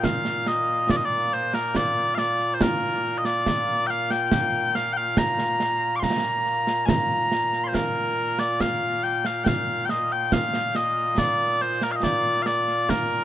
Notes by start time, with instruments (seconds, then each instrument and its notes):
Already playing: bagpipes A#2 A#3 F4
0.04 bagpipes F5, concert bass drum, snare
0.25 snare
0.47 bagpipes D#5, snare
0.89 bagpipes D5, concert bass drum, snare
0.97 bagpipes D#5
1.05 bagpipes D5
1.32 bagpipes C5, snare
1.54 bagpipes A#4, snare
1.75 bagpipes D5, concert bass drum, snare
2.15 bagpipes D5 F5, snare
2.39 snare
2.54 bagpipes C5
2.61 bagpipes A#4, concert bass drum, snare
3.18 bagpipes D#5
3.25 bagpipes D5, snare
3.46 concert bass drum, snare
3.87 bagpipes F5 G5, snare
4.11 bagpipes G5, snare
4.32 concert bass drum, snare
4.75 bagpipes F5, snare
4.93 bagpipes F5 G5
5.17 bagpipes A#5, concert bass drum, snare
5.39 snare
5.60 snare
5.96 bagpipes C6 D6
6.03 bagpipes A#5, concert bass drum, snare
6.46 snare
6.67 snare
6.86 bagpipes G#5 A#5, concert bass drum, snare
7.32 snare
7.53 snare
7.64 bagpipes C6
7.68 bagpipes C5
7.74 bagpipes A#4, concert bass drum, snare
8.39 bagpipes D5, snare
8.60 bagpipes F5, concert bass drum, snare
9.04 bagpipes G5, snare
9.25 bagpipes F5, snare
9.44 bagpipes F5 G5, concert bass drum, snare
9.86 bagpipes G5, snare
9.90 bagpipes D#5
10.12 bagpipes G5
10.32 bagpipes F5, concert bass drum, snare
10.54 snare
10.75 bagpipes D#5, snare
11.18 bagpipes D5, concert bass drum, snare
11.61 bagpipes C5, snare
11.82 bagpipes A#4, snare
11.92 bagpipes D#5 F5
12.03 bagpipes D5, concert bass drum, snare
12.42 bagpipes D5 F5, snare
12.68 snare
12.89 bagpipes A#4, concert bass drum, snare